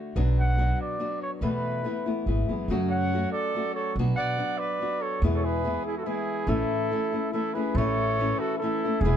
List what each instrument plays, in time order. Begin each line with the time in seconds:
Already playing: nylon-string guitar D3 A3 D4 F#4
0.16 upright bass B1, nylon-string guitar B2 F#3 B3 D4 F#4
0.39 trumpet F#5
0.58 nylon-string guitar F#3 B3 D4 F#4
0.81 trumpet D5
1.00 nylon-string guitar F#3 B3 D4 F#4
1.22 trumpet C#5
1.41 upright bass E2, nylon-string guitar E2 B2 E3 A3 B3 E4, trumpet B4
1.84 nylon-string guitar E3 A3 B3 E4
2.06 nylon-string guitar E3 A3 B3 E4
2.26 upright bass G#1, nylon-string guitar E3 G#3 B3 E4
2.49 upright bass F#1, nylon-string guitar E3 G#3 B3 E4
2.68 upright bass F#2, nylon-string guitar F#2 C#3 F#3 A3 C#4 F#4
2.89 trumpet C#5 F#5
3.13 nylon-string guitar F#3 A3 C#4 F#4
3.32 trumpet A4 D5
3.55 nylon-string guitar F#3 A3 C#4 F#4
3.74 trumpet A4 C#5
3.96 upright bass B1, nylon-string guitar B2 F#3 B3 D4 F#4
4.16 trumpet D5 F#5
4.38 nylon-string guitar F#3 B3 D4 F#4
4.58 trumpet B4 D5
4.81 nylon-string guitar F#3 B3 D4 F#4
5.01 trumpet A4 C#5
5.22 upright bass E2, nylon-string guitar E2 B2 E3 G#3 B3 E4
5.34 trumpet A4 C#5
5.43 trumpet G#4 B4
5.63 nylon-string guitar E3 G#3 B3 E4
5.85 trumpet E4 G#4
5.97 trumpet F#4 A4
6.04 nylon-string guitar E3 G#3 B3 E4, trumpet E4 G#4
6.47 upright bass A1, nylon-string guitar A2 E3 A3 C#4 E4, trumpet E4 A4
6.92 nylon-string guitar E3 A3 C#4 E4
7.13 nylon-string guitar A3 C#4 E4
7.32 nylon-string guitar E3 A3 C#4 E4, trumpet E4 A4
7.54 nylon-string guitar A3 C#4 E4, trumpet G#4 B4
7.75 upright bass A1, nylon-string guitar A2 E3 A3 C#4 E4, trumpet A4 C#5
8.20 nylon-string guitar E3 A3 C#4 E4
8.39 trumpet F#4 A4
8.58 nylon-string guitar E3, trumpet E4 A4
8.63 nylon-string guitar A3 C#4 E4
8.85 nylon-string guitar A3 C#4 E4
9.01 upright bass E1, nylon-string guitar E2 B2 E3, trumpet E4 G#4
9.05 nylon-string guitar G#3 B3 E4